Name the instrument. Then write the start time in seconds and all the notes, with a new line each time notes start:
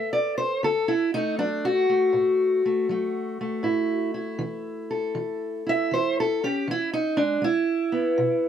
steel-string acoustic guitar
Already playing: A3 A4 E5
0.13 D5
0.38 C5
0.63 D3 A4
0.88 E4
1.14 A3 D#4
1.38 F#3 D4
1.65 F#4
1.90 A3
2.13 A2
2.65 A3
2.89 F#3 A3
3.41 A3
3.63 A2 E4
4.14 E4
4.39 E3
4.91 A4
5.15 E3
5.67 E4 E5
5.91 E3 C5
6.20 A4
6.44 C#4 G4
6.68 E3 E4
6.93 D#4
7.17 G#3 D4
7.42 G#3 E4
7.92 B3
8.18 B2